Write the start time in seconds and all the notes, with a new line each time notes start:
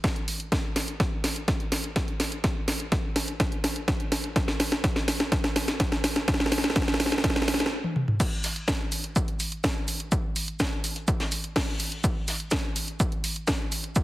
0.04 kick, snare, closed hi-hat
0.16 closed hi-hat
0.28 open hi-hat
0.40 closed hi-hat
0.52 kick, snare, closed hi-hat
0.76 snare, open hi-hat
0.88 closed hi-hat
1.00 kick, snare, closed hi-hat
1.24 snare, open hi-hat
1.36 closed hi-hat
1.48 kick, snare, closed hi-hat
1.60 closed hi-hat
1.72 snare, open hi-hat
1.84 closed hi-hat
1.96 kick, snare, closed hi-hat
2.08 closed hi-hat
2.20 snare, open hi-hat
2.32 closed hi-hat
2.44 kick, snare, closed hi-hat
2.68 snare, open hi-hat
2.80 closed hi-hat
2.92 kick, snare, closed hi-hat
3.16 snare, open hi-hat
3.28 closed hi-hat
3.40 kick, snare, closed hi-hat
3.52 closed hi-hat
3.64 snare, open hi-hat
3.76 closed hi-hat
3.88 kick, snare, closed hi-hat
4.00 closed hi-hat
4.12 snare, open hi-hat
4.24 closed hi-hat
4.36 kick, snare, closed hi-hat
4.48 snare
4.60 snare, open hi-hat
4.72 snare, closed hi-hat
4.84 kick, snare, closed hi-hat
4.96 snare
5.08 snare, open hi-hat
5.20 snare, closed hi-hat
5.32 kick, snare, closed hi-hat
5.44 snare, closed hi-hat
5.56 snare, open hi-hat
5.68 snare, closed hi-hat
5.80 kick, snare, closed hi-hat
5.92 snare, closed hi-hat
6.04 snare, open hi-hat
6.16 snare, closed hi-hat
6.28 kick, snare, closed hi-hat
6.34 snare
6.40 snare
6.46 snare
6.52 snare, open hi-hat
6.58 snare
6.64 snare, closed hi-hat
6.70 snare
6.76 kick, snare, closed hi-hat
6.82 snare
6.88 snare, closed hi-hat
6.94 snare
7.00 snare, open hi-hat
7.06 snare
7.12 snare, closed hi-hat
7.18 snare
7.24 kick, snare, closed hi-hat
7.30 snare
7.36 snare, closed hi-hat
7.42 snare
7.48 snare, open hi-hat
7.54 snare
7.60 snare, closed hi-hat
7.66 snare
7.84 high tom
7.96 mid tom
8.08 mid tom
8.20 kick, closed hi-hat, crash, shaker
8.43 snare, open hi-hat, shaker
8.56 closed hi-hat
8.68 kick, snare, closed hi-hat, shaker
8.92 open hi-hat, shaker
9.04 closed hi-hat
9.16 kick, closed hi-hat, shaker
9.28 closed hi-hat
9.40 open hi-hat, shaker
9.52 closed hi-hat
9.64 kick, snare, closed hi-hat, shaker
9.88 open hi-hat, shaker
10.00 closed hi-hat
10.12 kick, closed hi-hat, shaker
10.36 open hi-hat, shaker
10.48 closed hi-hat
10.60 kick, snare, closed hi-hat, shaker
10.84 open hi-hat, shaker
10.96 closed hi-hat
11.08 kick, closed hi-hat, shaker
11.20 snare, closed hi-hat
11.31 open hi-hat, shaker
11.44 closed hi-hat
11.56 kick, snare, closed hi-hat, open hi-hat
11.79 open hi-hat, shaker
11.92 closed hi-hat
12.04 kick, closed hi-hat, shaker
12.28 snare, open hi-hat, shaker
12.40 closed hi-hat
12.51 kick, snare, closed hi-hat, shaker
12.76 open hi-hat, shaker
12.88 closed hi-hat
13.00 kick, closed hi-hat, shaker
13.12 closed hi-hat
13.24 open hi-hat, shaker
13.36 closed hi-hat
13.47 kick, snare, closed hi-hat, shaker
13.72 open hi-hat, shaker
13.84 closed hi-hat
13.96 kick, closed hi-hat, shaker